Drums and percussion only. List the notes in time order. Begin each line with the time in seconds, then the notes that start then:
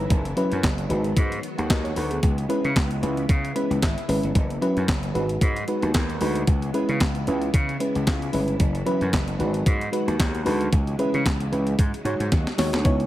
0.10 kick, closed hi-hat
0.25 closed hi-hat
0.37 closed hi-hat
0.52 closed hi-hat
0.63 kick, snare, clap, closed hi-hat
0.78 closed hi-hat
0.90 closed hi-hat
1.04 closed hi-hat
1.17 kick, closed hi-hat
1.32 closed hi-hat
1.43 closed hi-hat
1.58 closed hi-hat
1.70 kick, snare, clap, closed hi-hat
1.85 closed hi-hat
1.96 open hi-hat
2.11 closed hi-hat
2.23 kick, closed hi-hat
2.38 closed hi-hat
2.50 closed hi-hat
2.65 closed hi-hat
2.76 kick, snare, clap, closed hi-hat
2.91 closed hi-hat
3.03 closed hi-hat
3.17 closed hi-hat
3.29 kick, closed hi-hat
3.45 closed hi-hat
3.56 closed hi-hat
3.71 closed hi-hat
3.83 kick, snare, clap, closed hi-hat
3.98 closed hi-hat
4.09 open hi-hat
4.23 closed hi-hat
4.35 kick, closed hi-hat
4.50 closed hi-hat
4.62 closed hi-hat
4.77 closed hi-hat
4.88 kick, snare, clap, closed hi-hat
5.03 closed hi-hat
5.15 closed hi-hat
5.29 closed hi-hat
5.41 kick, closed hi-hat
5.56 closed hi-hat
5.68 closed hi-hat
5.82 closed hi-hat
5.94 kick, snare, clap, closed hi-hat
6.10 closed hi-hat
6.21 open hi-hat
6.35 closed hi-hat
6.47 kick, closed hi-hat
6.62 closed hi-hat
6.74 closed hi-hat
6.89 closed hi-hat
7.00 kick, snare, clap, closed hi-hat
7.15 closed hi-hat
7.27 closed hi-hat
7.42 closed hi-hat
7.54 kick, closed hi-hat
7.69 closed hi-hat
7.80 closed hi-hat
7.95 closed hi-hat
8.07 kick, snare, clap, closed hi-hat
8.22 closed hi-hat
8.33 open hi-hat
8.48 closed hi-hat
8.60 kick, closed hi-hat
8.75 closed hi-hat
8.87 closed hi-hat
9.01 closed hi-hat
9.13 kick, snare, clap, closed hi-hat
9.28 closed hi-hat
9.40 closed hi-hat
9.54 closed hi-hat
9.66 kick, closed hi-hat
9.81 closed hi-hat
9.93 closed hi-hat
10.08 closed hi-hat
10.20 kick, snare, clap, closed hi-hat
10.35 closed hi-hat
10.46 open hi-hat
10.61 closed hi-hat
10.73 kick, closed hi-hat
10.87 closed hi-hat
10.99 closed hi-hat
11.14 closed hi-hat
11.26 kick, snare, clap, closed hi-hat
11.40 closed hi-hat
11.53 closed hi-hat
11.67 closed hi-hat
11.79 kick, closed hi-hat
11.94 closed hi-hat
12.05 closed hi-hat
12.20 closed hi-hat
12.32 kick, snare, closed hi-hat
12.47 snare, closed hi-hat
12.58 snare, open hi-hat
12.73 snare, closed hi-hat
12.85 kick, closed hi-hat
13.00 closed hi-hat